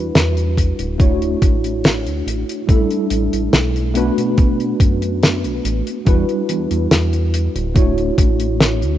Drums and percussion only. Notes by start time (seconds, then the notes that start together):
0.15 snare, closed hi-hat
0.37 closed hi-hat
0.57 kick, closed hi-hat
0.79 closed hi-hat
1.00 kick, closed hi-hat
1.22 closed hi-hat
1.42 kick, closed hi-hat
1.64 closed hi-hat
1.84 snare, closed hi-hat
2.07 closed hi-hat
2.28 closed hi-hat
2.49 closed hi-hat
2.69 kick, closed hi-hat
2.91 closed hi-hat
3.10 closed hi-hat
3.33 closed hi-hat
3.53 snare, closed hi-hat
3.76 closed hi-hat
3.95 closed hi-hat
4.18 closed hi-hat
4.38 kick, closed hi-hat
4.60 closed hi-hat
4.80 kick, closed hi-hat
5.02 closed hi-hat
5.23 snare, closed hi-hat
5.44 closed hi-hat
5.65 closed hi-hat
5.87 closed hi-hat
6.06 kick, closed hi-hat
6.29 closed hi-hat
6.49 closed hi-hat
6.71 closed hi-hat
6.91 snare, closed hi-hat
7.13 closed hi-hat
7.34 closed hi-hat
7.56 closed hi-hat
7.76 kick, closed hi-hat
7.98 closed hi-hat
8.18 kick, closed hi-hat
8.40 closed hi-hat
8.60 snare, closed hi-hat
8.82 closed hi-hat